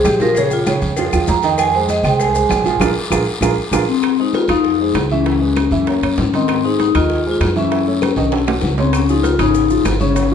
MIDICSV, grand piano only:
0, 0, Header, 1, 2, 480
1, 0, Start_track
1, 0, Key_signature, -4, "minor"
1, 0, Tempo, 306435
1, 562, Time_signature, 4, 2, 24, 8
1, 16203, End_track
2, 0, Start_track
2, 0, Title_t, "Grand piano"
2, 0, Program_c, 0, 0
2, 0, Note_on_c, 0, 56, 75
2, 0, Note_on_c, 0, 68, 76
2, 0, Note_on_c, 0, 72, 77
2, 242, Note_off_c, 0, 68, 0
2, 243, Note_off_c, 0, 56, 0
2, 252, Note_off_c, 0, 72, 0
2, 343, Note_on_c, 0, 53, 81
2, 344, Note_on_c, 0, 65, 82
2, 347, Note_on_c, 0, 68, 78
2, 531, Note_off_c, 0, 53, 0
2, 532, Note_off_c, 0, 65, 0
2, 534, Note_off_c, 0, 68, 0
2, 588, Note_on_c, 0, 49, 80
2, 599, Note_on_c, 0, 61, 83
2, 601, Note_on_c, 0, 73, 87
2, 971, Note_off_c, 0, 49, 0
2, 977, Note_off_c, 0, 61, 0
2, 978, Note_off_c, 0, 73, 0
2, 1063, Note_on_c, 0, 49, 81
2, 1069, Note_on_c, 0, 61, 85
2, 1071, Note_on_c, 0, 73, 79
2, 1448, Note_off_c, 0, 49, 0
2, 1451, Note_off_c, 0, 61, 0
2, 1452, Note_off_c, 0, 73, 0
2, 1538, Note_on_c, 0, 53, 73
2, 1547, Note_on_c, 0, 65, 76
2, 1548, Note_on_c, 0, 68, 69
2, 1728, Note_off_c, 0, 53, 0
2, 1733, Note_off_c, 0, 65, 0
2, 1734, Note_off_c, 0, 68, 0
2, 1782, Note_on_c, 0, 53, 78
2, 1789, Note_on_c, 0, 65, 78
2, 1790, Note_on_c, 0, 68, 79
2, 2166, Note_off_c, 0, 53, 0
2, 2171, Note_off_c, 0, 65, 0
2, 2172, Note_off_c, 0, 68, 0
2, 2255, Note_on_c, 0, 63, 95
2, 2257, Note_on_c, 0, 51, 95
2, 2262, Note_on_c, 0, 75, 93
2, 2642, Note_off_c, 0, 63, 0
2, 2643, Note_off_c, 0, 51, 0
2, 2646, Note_off_c, 0, 75, 0
2, 2729, Note_on_c, 0, 56, 81
2, 2737, Note_on_c, 0, 68, 80
2, 2743, Note_on_c, 0, 72, 76
2, 3118, Note_off_c, 0, 56, 0
2, 3123, Note_off_c, 0, 68, 0
2, 3127, Note_off_c, 0, 72, 0
2, 3210, Note_on_c, 0, 56, 86
2, 3217, Note_on_c, 0, 68, 86
2, 3220, Note_on_c, 0, 72, 84
2, 3598, Note_off_c, 0, 56, 0
2, 3603, Note_off_c, 0, 68, 0
2, 3604, Note_off_c, 0, 72, 0
2, 3677, Note_on_c, 0, 56, 79
2, 3686, Note_on_c, 0, 68, 81
2, 3690, Note_on_c, 0, 72, 83
2, 4070, Note_off_c, 0, 56, 0
2, 4076, Note_off_c, 0, 68, 0
2, 4078, Note_off_c, 0, 72, 0
2, 4157, Note_on_c, 0, 53, 79
2, 4165, Note_on_c, 0, 65, 79
2, 4169, Note_on_c, 0, 68, 81
2, 4354, Note_off_c, 0, 53, 0
2, 4359, Note_off_c, 0, 65, 0
2, 4361, Note_off_c, 0, 68, 0
2, 4398, Note_on_c, 0, 65, 94
2, 4400, Note_on_c, 0, 68, 98
2, 4401, Note_on_c, 0, 70, 90
2, 4551, Note_off_c, 0, 65, 0
2, 4552, Note_off_c, 0, 68, 0
2, 4553, Note_off_c, 0, 70, 0
2, 4878, Note_on_c, 0, 65, 93
2, 4880, Note_on_c, 0, 70, 91
2, 4885, Note_on_c, 0, 68, 100
2, 5031, Note_off_c, 0, 65, 0
2, 5032, Note_off_c, 0, 70, 0
2, 5035, Note_off_c, 0, 68, 0
2, 5361, Note_on_c, 0, 65, 97
2, 5367, Note_on_c, 0, 68, 100
2, 5369, Note_on_c, 0, 70, 105
2, 5513, Note_off_c, 0, 65, 0
2, 5516, Note_off_c, 0, 68, 0
2, 5518, Note_off_c, 0, 70, 0
2, 5842, Note_on_c, 0, 68, 97
2, 5848, Note_on_c, 0, 65, 97
2, 5850, Note_on_c, 0, 70, 97
2, 5994, Note_off_c, 0, 68, 0
2, 5997, Note_off_c, 0, 65, 0
2, 5998, Note_off_c, 0, 70, 0
2, 6569, Note_on_c, 0, 56, 68
2, 6570, Note_on_c, 0, 68, 64
2, 6579, Note_on_c, 0, 72, 63
2, 6958, Note_off_c, 0, 56, 0
2, 6958, Note_off_c, 0, 68, 0
2, 6964, Note_off_c, 0, 72, 0
2, 7042, Note_on_c, 0, 53, 78
2, 7048, Note_on_c, 0, 77, 82
2, 7050, Note_on_c, 0, 65, 79
2, 7434, Note_off_c, 0, 53, 0
2, 7437, Note_off_c, 0, 77, 0
2, 7438, Note_off_c, 0, 65, 0
2, 7524, Note_on_c, 0, 56, 67
2, 7527, Note_on_c, 0, 68, 64
2, 7540, Note_on_c, 0, 72, 69
2, 7915, Note_off_c, 0, 56, 0
2, 7916, Note_off_c, 0, 68, 0
2, 7924, Note_off_c, 0, 72, 0
2, 8008, Note_on_c, 0, 52, 79
2, 8012, Note_on_c, 0, 64, 80
2, 8014, Note_on_c, 0, 76, 81
2, 8200, Note_off_c, 0, 52, 0
2, 8203, Note_off_c, 0, 64, 0
2, 8204, Note_off_c, 0, 76, 0
2, 8243, Note_on_c, 0, 52, 66
2, 8245, Note_on_c, 0, 64, 71
2, 8250, Note_on_c, 0, 76, 76
2, 8438, Note_off_c, 0, 52, 0
2, 8439, Note_off_c, 0, 64, 0
2, 8442, Note_off_c, 0, 76, 0
2, 8474, Note_on_c, 0, 56, 64
2, 8479, Note_on_c, 0, 68, 68
2, 8483, Note_on_c, 0, 71, 66
2, 8869, Note_off_c, 0, 56, 0
2, 8872, Note_off_c, 0, 68, 0
2, 8875, Note_off_c, 0, 71, 0
2, 8960, Note_on_c, 0, 52, 82
2, 8961, Note_on_c, 0, 64, 88
2, 8963, Note_on_c, 0, 76, 77
2, 9156, Note_off_c, 0, 52, 0
2, 9157, Note_off_c, 0, 64, 0
2, 9158, Note_off_c, 0, 76, 0
2, 9213, Note_on_c, 0, 70, 61
2, 9214, Note_on_c, 0, 58, 67
2, 9222, Note_on_c, 0, 73, 67
2, 9404, Note_off_c, 0, 58, 0
2, 9404, Note_off_c, 0, 70, 0
2, 9409, Note_off_c, 0, 73, 0
2, 9440, Note_on_c, 0, 70, 68
2, 9443, Note_on_c, 0, 58, 73
2, 9449, Note_on_c, 0, 73, 73
2, 9833, Note_off_c, 0, 70, 0
2, 9835, Note_off_c, 0, 58, 0
2, 9838, Note_off_c, 0, 73, 0
2, 9943, Note_on_c, 0, 51, 85
2, 9947, Note_on_c, 0, 75, 79
2, 9950, Note_on_c, 0, 63, 76
2, 10327, Note_off_c, 0, 51, 0
2, 10329, Note_off_c, 0, 75, 0
2, 10331, Note_off_c, 0, 63, 0
2, 10402, Note_on_c, 0, 56, 69
2, 10405, Note_on_c, 0, 68, 70
2, 10407, Note_on_c, 0, 72, 68
2, 10795, Note_off_c, 0, 56, 0
2, 10796, Note_off_c, 0, 68, 0
2, 10798, Note_off_c, 0, 72, 0
2, 10883, Note_on_c, 0, 51, 85
2, 10894, Note_on_c, 0, 63, 83
2, 10900, Note_on_c, 0, 75, 83
2, 11275, Note_off_c, 0, 51, 0
2, 11282, Note_off_c, 0, 63, 0
2, 11285, Note_off_c, 0, 75, 0
2, 11374, Note_on_c, 0, 56, 70
2, 11377, Note_on_c, 0, 68, 69
2, 11392, Note_on_c, 0, 72, 68
2, 11762, Note_off_c, 0, 56, 0
2, 11764, Note_off_c, 0, 68, 0
2, 11772, Note_off_c, 0, 72, 0
2, 11837, Note_on_c, 0, 52, 85
2, 11847, Note_on_c, 0, 64, 77
2, 11847, Note_on_c, 0, 76, 77
2, 12035, Note_off_c, 0, 52, 0
2, 12041, Note_off_c, 0, 64, 0
2, 12041, Note_off_c, 0, 76, 0
2, 12078, Note_on_c, 0, 52, 70
2, 12083, Note_on_c, 0, 76, 74
2, 12084, Note_on_c, 0, 64, 73
2, 12276, Note_off_c, 0, 52, 0
2, 12279, Note_off_c, 0, 64, 0
2, 12279, Note_off_c, 0, 76, 0
2, 12326, Note_on_c, 0, 57, 67
2, 12336, Note_on_c, 0, 69, 65
2, 12342, Note_on_c, 0, 73, 70
2, 12717, Note_off_c, 0, 57, 0
2, 12723, Note_off_c, 0, 69, 0
2, 12727, Note_off_c, 0, 73, 0
2, 12795, Note_on_c, 0, 51, 83
2, 12797, Note_on_c, 0, 63, 81
2, 12807, Note_on_c, 0, 75, 82
2, 12994, Note_off_c, 0, 51, 0
2, 12995, Note_off_c, 0, 63, 0
2, 13001, Note_off_c, 0, 75, 0
2, 13036, Note_on_c, 0, 54, 64
2, 13040, Note_on_c, 0, 66, 67
2, 13046, Note_on_c, 0, 69, 69
2, 13235, Note_off_c, 0, 54, 0
2, 13237, Note_off_c, 0, 66, 0
2, 13241, Note_off_c, 0, 69, 0
2, 13277, Note_on_c, 0, 66, 66
2, 13278, Note_on_c, 0, 54, 69
2, 13290, Note_on_c, 0, 69, 67
2, 13672, Note_off_c, 0, 66, 0
2, 13673, Note_off_c, 0, 54, 0
2, 13680, Note_off_c, 0, 69, 0
2, 13762, Note_on_c, 0, 49, 77
2, 13765, Note_on_c, 0, 61, 83
2, 13770, Note_on_c, 0, 73, 76
2, 14155, Note_off_c, 0, 49, 0
2, 14157, Note_off_c, 0, 61, 0
2, 14160, Note_off_c, 0, 73, 0
2, 14248, Note_on_c, 0, 68, 69
2, 14249, Note_on_c, 0, 53, 66
2, 14254, Note_on_c, 0, 65, 67
2, 14639, Note_off_c, 0, 53, 0
2, 14639, Note_off_c, 0, 68, 0
2, 14642, Note_off_c, 0, 65, 0
2, 14724, Note_on_c, 0, 49, 86
2, 14733, Note_on_c, 0, 61, 83
2, 14742, Note_on_c, 0, 73, 78
2, 15117, Note_off_c, 0, 49, 0
2, 15122, Note_off_c, 0, 61, 0
2, 15127, Note_off_c, 0, 73, 0
2, 15192, Note_on_c, 0, 53, 67
2, 15199, Note_on_c, 0, 65, 68
2, 15199, Note_on_c, 0, 68, 65
2, 15590, Note_off_c, 0, 53, 0
2, 15594, Note_off_c, 0, 65, 0
2, 15594, Note_off_c, 0, 68, 0
2, 15670, Note_on_c, 0, 61, 79
2, 15671, Note_on_c, 0, 49, 83
2, 15678, Note_on_c, 0, 73, 82
2, 15870, Note_off_c, 0, 49, 0
2, 15872, Note_off_c, 0, 61, 0
2, 15877, Note_off_c, 0, 73, 0
2, 15893, Note_on_c, 0, 49, 66
2, 15898, Note_on_c, 0, 61, 69
2, 15911, Note_on_c, 0, 73, 75
2, 16102, Note_off_c, 0, 49, 0
2, 16105, Note_off_c, 0, 61, 0
2, 16113, Note_off_c, 0, 73, 0
2, 16203, End_track
0, 0, End_of_file